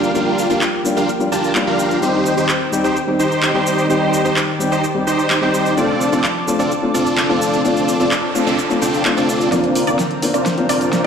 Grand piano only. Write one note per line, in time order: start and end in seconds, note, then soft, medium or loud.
0.00 0.11 G3 medium
0.00 0.12 A#3 medium
0.00 0.12 D4 medium
0.00 0.12 F4 medium
0.14 0.47 G3 medium
0.14 0.47 A#3 medium
0.14 0.47 D4 medium
0.14 0.47 F4 medium
0.49 0.56 G3 medium
0.49 0.56 A#3 medium
0.49 0.56 D4 medium
0.49 0.56 F4 medium
0.84 0.95 G3 medium
0.84 0.95 A#3 medium
0.84 0.95 D4 medium
0.84 0.96 F4 medium
1.19 1.26 G3 medium
1.19 1.26 A#3 medium
1.19 1.27 D4 medium
1.19 1.27 F4 medium
1.55 1.99 G3 medium
1.55 1.99 A#3 medium
1.55 1.99 D4 medium
1.55 2.00 F4 medium
2.02 2.34 G3 medium
2.02 2.34 C4 medium
2.02 2.35 D#4 medium
2.02 2.35 G4 medium
2.37 2.43 G3 medium
2.37 2.44 C4 medium
2.37 2.44 D#4 medium
2.37 2.44 G4 medium
2.72 2.82 G3 medium
2.72 2.83 C4 medium
2.72 2.83 D#4 medium
2.72 2.83 G4 medium
3.07 3.14 G3 medium
3.07 3.14 C4 medium
3.07 3.14 D#4 medium
3.07 3.14 G4 medium
3.54 3.86 G3 medium
3.54 3.87 C4 medium
3.54 3.87 D#4 medium
3.54 3.87 G4 medium
3.89 4.22 G3 medium
3.89 4.22 C4 medium
3.89 4.22 D#4 medium
3.89 4.22 G4 medium
4.24 4.31 G3 medium
4.24 4.31 C4 medium
4.24 4.31 D#4 medium
4.24 4.32 G4 medium
4.59 4.70 G3 medium
4.59 4.70 C4 medium
4.59 4.70 D#4 medium
4.59 4.71 G4 medium
4.94 5.01 G3 medium
4.94 5.01 C4 medium
4.94 5.02 D#4 medium
4.94 5.02 G4 medium
5.41 5.74 G3 medium
5.41 5.74 C4 medium
5.41 5.74 D#4 medium
5.41 5.75 G4 medium
5.76 6.09 A3 medium
5.76 6.09 C4 medium
5.76 6.09 D4 medium
5.76 6.10 F4 medium
6.12 6.18 A3 medium
6.12 6.19 C4 medium
6.12 6.19 D4 medium
6.12 6.19 F4 medium
6.47 6.57 A3 medium
6.47 6.58 C4 medium
6.47 6.58 D4 medium
6.47 6.58 F4 medium
6.82 6.89 A3 medium
6.82 6.89 C4 medium
6.82 6.89 D4 medium
6.82 6.89 F4 medium
7.29 7.61 A3 medium
7.29 7.62 C4 medium
7.29 7.62 D4 medium
7.29 7.62 F4 medium
7.64 7.97 A3 medium
7.64 7.97 C4 medium
7.64 7.97 D4 medium
7.64 7.97 F4 medium
7.99 8.06 A3 medium
7.99 8.06 C4 medium
7.99 8.06 D4 medium
7.99 8.06 F4 medium
8.34 8.45 A3 medium
8.34 8.45 C4 medium
8.34 8.45 D4 medium
8.34 8.46 F4 medium
8.69 8.76 A3 medium
8.69 8.76 C4 medium
8.69 8.77 D4 medium
8.69 8.77 F4 medium
9.05 9.49 A3 medium
9.05 9.49 C4 medium
9.05 9.49 D4 medium
9.05 9.50 F4 medium
9.51 9.84 A#3 medium
9.51 9.84 C4 medium
9.51 9.84 D4 medium
9.51 9.85 F4 medium
9.87 9.93 A#3 medium
9.87 9.94 C4 medium
9.87 9.94 D4 medium
9.87 9.94 F4 medium
10.22 10.32 A#3 medium
10.22 10.33 C4 medium
10.22 10.33 D4 medium
10.22 10.33 F4 medium
10.57 10.64 A#3 medium
10.57 10.64 C4 medium
10.57 10.64 D4 medium
10.57 10.64 F4 medium
11.04 11.07 A#3 medium